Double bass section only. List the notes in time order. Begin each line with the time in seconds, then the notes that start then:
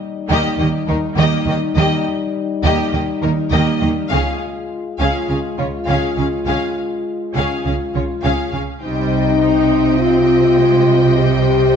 0.30 D#2
0.58 D#2
0.88 D#2
1.17 D#2
1.46 D#2
1.76 D#2
2.64 D#2
2.93 D#2
3.22 D#2
3.52 D#2
3.83 D#2
4.12 C#2
5.00 C#2
5.29 C#2
5.59 C#2
5.87 C#2
6.18 C#2
6.47 C#2
7.36 C#2
7.65 C#2
7.95 C#2
8.24 C#2
8.53 C#2
8.82 C2